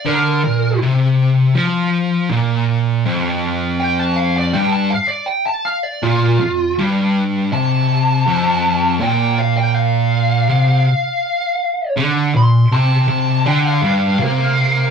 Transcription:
<<
  \new Staff \with { instrumentName = "Lead electric guitar" } { \time 4/4 \key bes \lydian \tempo 4 = 81 bes'4 r2. | r4 g''16 a''16 f''16 d''16 g''16 a''16 f''16 d''16 g''16 a''16 f''16 d''16 | f'4 r4 a''2 | g''8 f''16 g''16 f''2. |
r8 c'''8 a''4 g''16 f''8. <bes' f''>4 | }
  \new Staff \with { instrumentName = "Distorted electric guitar" } { \clef bass \time 4/4 \key bes \lydian d8 bes,8 c4 f4 bes,4 | f,2 g,8 r4. | bes,8 f,8 g,4 c4 f,4 | bes,2 c8 r4. |
d8 bes,8 c8 c8 d8 g,8 c4 | }
>>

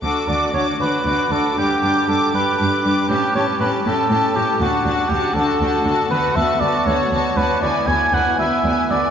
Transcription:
<<
  \new Staff \with { instrumentName = "Violin section" } { \time 6/8 \key d \major \tempo 4. = 79 d'''8 d'''8 d'''8 d'''8 d'''8 d'''8 | d'''8 d'''8 d'''8 d'''8 d'''8 d'''8 | a''8 a''8 a''8 a''8 a''8 a''8 | a''8 a''8 a''8 a''8 a''8 a''8 |
\key b \dorian a''8 a''8 a''8 a''8 a''8 a''8 | gis''8 gis''8 gis''8 gis''8 gis''8 gis''8 | }
  \new Staff \with { instrumentName = "Cor anglais" } { \time 6/8 \key d \major a'8 d''8 cis''8 b'4 a'8 | g'4 a'8 b'4. | g'8 cis''8 b'8 a'4 g'8 | fis'4 g'8 a'4. |
\key b \dorian b'8 e''8 d''8 cis''4 b'8 | d''8 gis''8 fis''8 e''4 d''8 | }
  \new Staff \with { instrumentName = "Violin section" } { \time 6/8 \key d \major fis'8 fis'8 fis'8 fis'8 fis'8 fis'8 | g'8 g'8 g'8 g'8 g'8 g'8 | g'8 g'8 g'8 g'8 g'8 g'8 | fis'8 fis'8 fis'8 fis'8 fis'8 fis'8 |
\key b \dorian fis'8 fis'8 fis'8 fis'8 fis'8 fis'8 | e'8 e'8 e'8 e'8 e'8 e'8 | }
  \new Staff \with { instrumentName = "Viola section" } { \time 6/8 \key d \major d'8 d'8 d'8 d'8 d'8 d'8 | d'8 d'8 d'8 d'8 d'8 d'8 | cis'8 cis'8 cis'8 cis'8 cis'8 cis'8 | d'8 d'8 d'8 d'8 d'8 d'8 |
\key b \dorian b8 b8 b8 b8 b8 b8 | b8 b8 b8 b8 b8 b8 | }
  \new Staff \with { instrumentName = "Cello section" } { \clef bass \time 6/8 \key d \major d,8 d,8 d,8 d,8 d,8 d,8 | g,8 g,8 g,8 g,8 g,8 g,8 | a,8 a,8 a,8 a,8 a,8 a,8 | d,8 d,8 d,8 d,8 d,8 d,8 |
\key b \dorian d,8 d,8 d,8 d,8 d,8 d,8 | d,8 d,8 d,8 d,8 d,8 d,8 | }
>>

